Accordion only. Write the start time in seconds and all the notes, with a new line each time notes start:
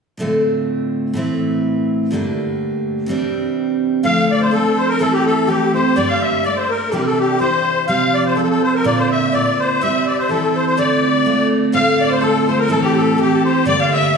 4.05 F5
4.31 D5
4.41 C5
4.52 A4
4.78 C5
4.89 A#4
5.00 A4
5.13 G4
5.26 A4
5.47 G4
5.74 C5
5.96 D5
6.08 F5
6.21 E5
6.44 D5
6.56 C5
6.69 A#4
6.89 G4 A4
7.02 A#4
7.06 A4
7.19 G4
7.40 C5
7.88 F5
8.14 D5
8.25 C5
8.36 A4
8.43 A4
8.50 A4
8.63 C5
8.75 A#4
8.86 D5
8.97 C5
9.11 E5
9.33 D5
9.59 C5
9.82 E5
10.07 D5
10.18 C5
10.30 A4
10.55 C5
10.67 C5
10.78 D5
11.75 F5
12.01 D5
12.12 C5
12.22 A4
12.48 C5
12.59 A#4
12.70 A4
12.83 G4
12.96 A4
13.20 G4
13.45 C5
13.67 D5
13.80 F5
13.93 E5